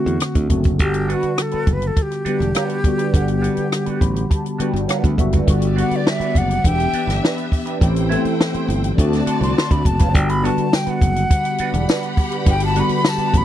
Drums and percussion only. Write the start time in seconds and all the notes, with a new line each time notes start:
0.07 closed hi-hat
0.20 cross-stick, closed hi-hat
0.35 kick, closed hi-hat
0.50 kick, closed hi-hat
0.64 kick, closed hi-hat
0.79 kick, closed hi-hat
0.94 closed hi-hat
1.10 closed hi-hat
1.23 closed hi-hat
1.38 cross-stick, closed hi-hat
1.51 closed hi-hat
1.67 kick, closed hi-hat
1.82 closed hi-hat
1.97 kick, closed hi-hat
2.12 cross-stick, closed hi-hat
2.26 closed hi-hat
2.41 cross-stick, closed hi-hat
2.55 cross-stick, closed hi-hat
2.69 closed hi-hat
2.84 kick, closed hi-hat
2.99 closed hi-hat
3.14 kick, closed hi-hat
3.28 closed hi-hat
3.44 closed hi-hat
3.57 closed hi-hat
3.72 cross-stick, closed hi-hat
3.86 closed hi-hat
4.01 kick, closed hi-hat
4.16 closed hi-hat
4.31 kick, closed hi-hat
4.46 closed hi-hat
4.60 closed hi-hat
4.76 cross-stick, closed hi-hat
4.89 cross-stick, closed hi-hat
5.04 kick, closed hi-hat
5.18 kick, closed hi-hat
5.33 kick, closed hi-hat
5.48 kick, closed hi-hat
5.62 closed hi-hat
5.78 closed hi-hat
5.91 closed hi-hat
6.07 snare
6.21 closed hi-hat
6.35 kick, closed hi-hat
6.51 closed hi-hat
6.65 kick, closed hi-hat
6.80 closed hi-hat
6.93 closed hi-hat
7.09 snare, closed hi-hat
7.25 snare
7.38 closed hi-hat
7.52 kick, open hi-hat
7.67 closed hi-hat
7.81 kick, closed hi-hat
7.96 closed hi-hat
8.12 closed hi-hat
8.25 closed hi-hat
8.41 snare
8.54 closed hi-hat
8.70 closed hi-hat
8.84 closed hi-hat
8.98 kick, closed hi-hat
9.13 snare, closed hi-hat
9.27 closed hi-hat
9.43 closed hi-hat
9.58 snare
9.71 kick, closed hi-hat
9.85 kick, closed hi-hat
9.99 kick, closed hi-hat
10.15 kick, closed hi-hat
10.29 closed hi-hat
10.45 closed hi-hat
10.58 closed hi-hat
10.73 snare, tambourine
10.87 closed hi-hat
11.01 kick, closed hi-hat
11.16 closed hi-hat
11.31 kick, closed hi-hat
11.45 closed hi-hat
11.58 closed hi-hat
11.74 closed hi-hat
11.89 snare, tambourine
12.03 closed hi-hat
12.17 kick, open hi-hat
12.32 closed hi-hat
12.46 kick, closed hi-hat
12.60 closed hi-hat
12.76 closed hi-hat
12.89 closed hi-hat
13.05 snare, tambourine
13.19 closed hi-hat
13.34 kick, closed hi-hat